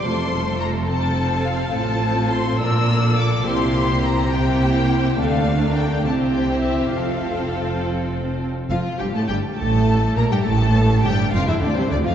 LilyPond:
<<
  \new Staff \with { instrumentName = "Violin section" } { \time 6/8 \key f \major \tempo 4. = 69 c'''4 bes''8 a''4 f''8 | a''4 c'''8 e'''4 d'''8 | c'''4 bes''8 g''4. | f''4 g''8 a''8 g''8 e''8 |
f''4. r4. | f''8 g''16 a''16 g''8 a''4 bes''16 g''16 | a''4 g''8 f''16 e''16 d''16 c''16 d''16 f''16 | }
  \new Staff \with { instrumentName = "Violin section" } { \time 6/8 \key f \major << { c''4. c''4. | c''4. d''4. | c''4. c''4. | a'8. bes'8. c''4. |
c''2~ c''8. r16 | f'8 g'16 a'16 g'8 a'4 bes'16 g'16 | a'4 g'8 f'16 e'16 d'16 c'16 d'16 f'16 | } \\ { a'4. a'4. | a'4. bes'8. a'8. | g'4. g'4. | d'4. g'4. |
a'2~ a'8. r16 | r2. | r2. | } >> }
  \new Staff \with { instrumentName = "Viola section" } { \time 6/8 \key f \major <a f'>4. <c' f'>4. | <c' f'>4. <bes f'>4. | <bes e'>4. <bes e'>4. | <a d'>4. <c' e'>4. |
<c' f'>2~ <c' f'>8 r8 | f8 g16 a16 g8 a4 bes16 g16 | a4 g8 f16 e16 d16 c16 d16 f16 | }
  \new Staff \with { instrumentName = "Cello section" } { \clef bass \time 6/8 \key f \major f,2. | a,4. bes,4. | c2. | d4. c4. |
f,2~ f,8 r8 | f,8 g,16 a,16 g,8 a,4 bes,16 g,16 | a,4 g,8 f,16 e,16 d,16 c,16 d,16 f,16 | }
  \new Staff \with { instrumentName = "Double bass section" } { \clef bass \time 6/8 \key f \major f,,2. | a,,4. bes,,4. | c,2. | d,4. c,4. |
f,,2~ f,,8 r8 | f,,8 g,,16 r16 g,,8 a,,4 bes,,16 r16 | a,,4 g,,8 f,,16 r16 d,16 r16 d,16 r16 | }
>>